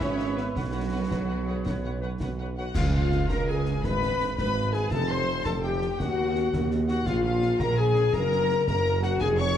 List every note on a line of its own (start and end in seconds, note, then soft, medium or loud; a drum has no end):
0.00 0.49 G#1 medium
0.00 0.50 G#1 medium
0.00 0.54 B3 medium
0.00 0.37 C#4 loud
0.00 0.19 E4 medium
0.00 0.38 G#4 medium
0.00 2.53 B4 medium
0.00 0.10 B4 medium
0.00 0.37 C#5 medium
0.00 0.38 C#5 loud
0.00 0.59 E5 medium
0.00 0.08 E5 medium
0.00 0.10 E5 medium
0.00 concert bass drum medium
0.00 snare medium
0.18 0.57 D#3 medium
0.18 0.28 B4 medium
0.18 0.26 E5 medium
0.18 0.28 E5 medium
0.18 snare medium
0.36 0.56 B3 medium
0.36 0.45 B4 medium
0.36 0.57 B4 medium
0.36 0.46 B4 medium
0.36 0.44 E5 medium
0.36 0.46 E5 medium
0.36 snare soft
0.55 1.04 B1 medium
0.55 1.05 B1 medium
0.55 2.21 F#3 medium
0.55 2.54 B3 medium
0.55 2.59 C#4 medium
0.55 2.18 F#4 medium
0.55 1.05 F#4 medium
0.55 2.19 F#4 medium
0.55 0.64 B4 medium
0.55 0.64 C#5 medium
0.55 2.35 C#5 medium
0.55 0.63 F#5 medium
0.55 concert bass drum medium
0.55 snare medium
0.72 0.82 B4 medium
0.72 0.81 C#5 medium
0.72 0.80 F#5 medium
0.91 1.01 B4 medium
0.91 1.00 C#5 medium
0.91 0.99 F#5 medium
1.09 1.60 B1 medium
1.09 1.48 B4 medium
1.09 1.19 B4 medium
1.09 1.19 C#5 medium
1.09 1.17 F#5 medium
1.09 concert bass drum medium
1.09 snare medium
1.28 1.37 B4 medium
1.28 1.37 C#5 medium
1.28 1.36 F#5 medium
1.46 1.67 G#4 medium
1.46 1.56 B4 medium
1.46 1.56 C#5 medium
1.46 1.55 F#5 medium
1.65 2.15 B1 medium
1.65 1.76 B4 medium
1.65 2.01 C#5 medium
1.65 1.75 C#5 medium
1.65 1.72 F#5 medium
1.65 concert bass drum medium
1.65 snare medium
1.84 1.93 B4 medium
1.84 1.93 C#5 medium
1.84 1.91 F#5 medium
2.01 2.10 B4 medium
2.01 2.11 B4 medium
2.01 2.11 C#5 medium
2.01 2.10 F#5 medium
2.20 2.70 B1 medium
2.20 2.57 F#4 medium
2.20 2.29 B4 medium
2.20 2.29 C#5 medium
2.20 2.28 F#5 medium
2.20 concert bass drum medium
2.20 snare medium
2.39 2.48 B4 medium
2.39 2.48 C#5 medium
2.39 2.46 F#5 medium
2.57 2.66 F#4 medium
2.57 2.76 F#4 medium
2.57 2.68 F#4 medium
2.57 2.66 B4 medium
2.57 2.66 C#5 medium
2.57 2.74 F#5 medium
2.57 2.63 F#5 medium
2.57 2.75 F#5 medium
2.75 3.24 C#2 loud
2.75 3.24 C#2 medium
2.75 3.24 C#3 medium
2.75 3.26 C#3 loud
2.75 2.84 F4 loud
2.75 2.95 F4 medium
2.75 2.93 F4 medium
2.75 2.91 F5 loud
2.75 2.93 F5 medium
2.75 2.94 F5 medium
2.75 concert bass drum medium
2.75 snare medium
2.75 crash medium
2.93 3.29 F4 loud
2.93 3.30 F4 medium
2.93 3.29 F4 medium
2.93 3.29 F5 medium
2.93 3.30 F5 medium
2.93 3.31 F5 medium
3.12 snare medium
3.28 3.78 C#2 medium
3.28 3.78 C#3 medium
3.28 3.48 A#4 loud
3.28 3.52 A#4 loud
3.28 3.49 A#4 loud
3.28 3.47 A#5 loud
3.28 3.36 A#5 loud
3.28 3.46 A#5 loud
3.28 concert bass drum medium
3.28 snare medium
3.47 3.85 G#4 medium
3.47 3.86 G#4 medium
3.47 3.86 G#5 medium
3.47 3.84 G#5 medium
3.51 3.86 G#4 medium
3.66 snare medium
3.83 4.32 G#1 medium
3.83 4.32 G#2 medium
3.83 4.37 B4 loud
3.83 4.24 B4 loud
3.83 4.38 B4 loud
3.83 4.36 B5 loud
3.83 4.37 B5 loud
3.83 concert bass drum medium
3.83 snare medium
4.02 snare medium
4.20 snare medium
4.38 4.86 G#1 medium
4.38 4.86 G#2 medium
4.38 4.73 B4 medium
4.38 4.76 B4 loud
4.38 4.75 B4 loud
4.38 4.73 B5 loud
4.38 4.74 B5 loud
4.38 concert bass drum medium
4.38 snare medium
4.73 4.92 G#4 loud
4.73 4.94 G#4 medium
4.73 4.93 G#4 medium
4.73 4.92 G#5 loud
4.73 4.92 G#5 medium
4.73 4.92 G#5 loud
4.73 snare medium
4.90 5.40 F1 medium
4.90 5.40 F1 loud
4.90 5.40 F2 medium
4.90 5.10 A4 loud
4.90 5.13 A4 loud
4.90 5.11 A4 loud
4.90 5.09 A5 loud
4.90 5.10 A5 loud
4.90 5.12 A5 loud
4.90 concert bass drum medium
4.90 snare medium
5.09 5.45 C5 loud
5.09 5.46 C5 loud
5.09 5.46 C6 loud
5.09 5.47 C6 loud
5.09 5.46 C6 loud
5.45 5.86 F1 medium
5.45 5.94 F1 medium
5.45 5.94 F2 medium
5.45 5.64 A4 medium
5.45 5.54 A4 loud
5.45 5.65 A4 loud
5.45 5.52 A5 medium
5.45 5.64 A5 loud
5.45 5.63 A5 medium
5.45 concert bass drum medium
5.45 snare medium
5.63 5.99 G4 medium
5.63 6.01 G4 medium
5.63 5.99 G5 medium
5.67 6.01 G4 loud
5.82 snare medium
5.99 6.47 D#2 loud
5.99 6.47 D#2 medium
5.99 6.69 F#4 medium
5.99 6.71 F#4 medium
5.99 6.65 F#5 medium
5.99 6.72 F#5 medium
5.99 concert bass drum medium
5.99 snare medium
6.03 6.72 F#4 loud
6.36 snare medium
6.53 7.01 D#2 medium
6.53 concert bass drum medium
6.53 snare medium
6.71 snare medium
6.87 6.96 F#4 medium
6.87 7.08 F#4 loud
6.87 6.93 F#5 medium
6.87 7.06 F#5 medium
6.87 7.07 F#5 medium
6.87 snare medium
6.92 6.99 F#4 loud
7.05 7.54 A#1 loud
7.05 7.55 A#1 loud
7.05 7.55 A#2 loud
7.05 7.24 F4 loud
7.05 7.24 F4 medium
7.05 7.24 F4 loud
7.05 7.13 F5 loud
7.05 7.12 F5 loud
7.05 7.23 F5 loud
7.05 concert bass drum medium
7.05 snare medium
7.05 crash soft
7.24 7.61 F4 loud
7.24 7.60 F4 medium
7.24 7.60 F4 loud
7.24 7.59 F5 loud
7.24 7.60 F5 medium
7.24 7.61 F5 loud
7.43 snare medium
7.58 8.08 A#1 loud
7.58 8.08 A#2 loud
7.58 7.80 A#4 loud
7.58 7.78 A#4 loud
7.58 7.80 A#4 loud
7.58 7.78 A#5 loud
7.58 concert bass drum medium
7.58 snare medium
7.77 8.14 G#4 loud
7.77 8.15 G#4 loud
7.77 8.14 G#5 loud
7.77 8.15 G#5 loud
7.95 snare medium
8.13 8.61 F#1 loud
8.13 8.62 F#1 loud
8.13 8.61 F#2 loud
8.13 8.67 A#4 loud
8.13 8.67 A#5 loud
8.13 8.66 A#5 loud
8.13 concert bass drum medium
8.13 snare medium
8.19 8.69 A#4 loud
8.32 snare medium
8.50 snare medium
8.66 9.15 F#1 medium
8.66 9.15 F#1 loud
8.66 9.15 F#2 medium
8.66 9.05 A#4 loud
8.66 9.03 A#4 loud
8.66 9.04 A#4 loud
8.66 9.05 A#5 loud
8.66 9.03 A#5 loud
8.66 concert bass drum medium
8.66 snare medium
9.02 9.21 F#4 loud
9.02 9.21 F#5 loud
9.02 9.11 F#5 loud
9.02 snare medium
9.20 9.57 F1 loud
9.20 9.57 F2 loud
9.20 9.41 G#4 loud
9.20 9.39 G#4 loud
9.20 9.40 G#4 loud
9.20 9.39 G#5 loud
9.20 9.28 G#5 loud
9.20 concert bass drum medium
9.20 snare medium
9.38 9.57 C#5 loud
9.38 9.57 C#6 loud